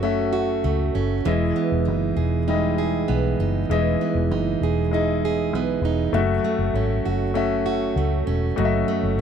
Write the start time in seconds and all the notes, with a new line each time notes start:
Already playing: F#1 F#2 A3 F#4 E5
0.03 A3 C#4 F#4 E5
0.33 F#4
0.64 C#2 A3
0.95 F#1 C#4
1.25 E1 E3 G#3 E4 D#5
1.56 B3
1.72 E1
1.85 F#1 D#4
2.16 E1 G#4
2.48 G3 D#4 E4 D#5
2.54 G#3
2.78 G#4
3.08 B1 B3
3.39 F#1 D#4
3.69 E1 E3 G#3 E4 D#5
4.01 B3
4.15 E1
4.31 F#1 D#4
4.61 E1 G#4
4.91 G#3 D#4 E4 D#5
5.25 G#4
5.53 B1 B3
5.82 E1 D#4
6.13 F#1 F#2 A3 F#4 E5
6.44 A3
6.58 F#1
6.74 G#1 C#4
7.05 F#1 F#4
7.34 A3 C#4 F#4 E5
7.66 F#4
7.96 C#2 A3
8.27 E1 C#4
8.56 F#1 F#2 A3 F#4 D#5
8.65 E5
8.88 A3
9.03 F#1
9.18 G#1